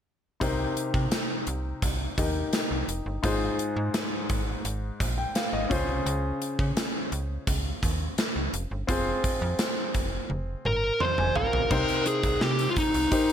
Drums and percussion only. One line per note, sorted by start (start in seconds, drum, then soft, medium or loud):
0.41 kick medium
0.41 closed hi-hat medium
0.77 closed hi-hat medium
0.94 kick medium
1.12 snare medium
1.12 closed hi-hat medium
1.47 closed hi-hat medium
1.82 kick medium
1.82 closed hi-hat medium
2.18 kick medium
2.18 closed hi-hat medium
2.53 snare medium
2.53 closed hi-hat medium
2.89 closed hi-hat medium
3.24 kick medium
3.24 closed hi-hat medium
3.59 closed hi-hat medium
3.94 snare medium
3.94 closed hi-hat medium
4.29 kick medium
4.29 closed hi-hat medium
4.65 closed hi-hat medium
5.00 kick medium
5.00 closed hi-hat medium
5.35 snare medium
5.35 closed hi-hat medium
5.71 kick medium
5.71 closed hi-hat medium
6.06 closed hi-hat medium
6.42 closed hi-hat medium
6.59 kick medium
6.77 snare loud
6.77 closed hi-hat medium
7.12 closed hi-hat medium
7.47 kick medium
7.47 closed hi-hat medium
7.83 kick medium
7.83 closed hi-hat medium
8.18 snare medium
8.18 closed hi-hat medium
8.54 closed hi-hat medium
8.89 kick medium
8.89 closed hi-hat medium
9.24 kick medium
9.24 closed hi-hat medium
9.59 snare loud
9.59 closed hi-hat medium
9.94 kick medium
9.94 closed hi-hat medium
10.30 high tom soft
10.65 mid tom medium
11.00 mid tom medium
11.18 mid tom medium
11.36 floor tom medium
11.53 floor tom medium
11.71 kick medium
11.71 crash medium
11.89 closed hi-hat soft
12.06 closed hi-hat medium
12.23 kick medium
12.23 closed hi-hat soft
12.41 snare loud
12.59 closed hi-hat soft
12.76 kick medium
12.76 closed hi-hat medium
12.94 closed hi-hat soft
13.12 kick medium
13.12 closed hi-hat medium